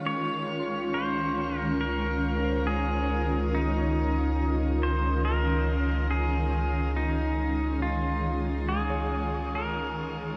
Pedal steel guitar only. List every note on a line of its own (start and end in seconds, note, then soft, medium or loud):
0.07 0.94 C#5 medium
0.94 1.57 C5 medium
1.57 1.80 A#4 medium
1.81 2.69 A#4 medium
2.67 3.55 G#4 medium
3.55 4.86 D#4 medium
4.83 5.24 C5 medium
5.25 6.12 A#4 medium
6.11 6.98 G#4 medium
6.97 7.82 D#4 medium
7.82 8.70 F4 medium
8.69 9.55 G#4 medium
9.55 10.16 A#4 medium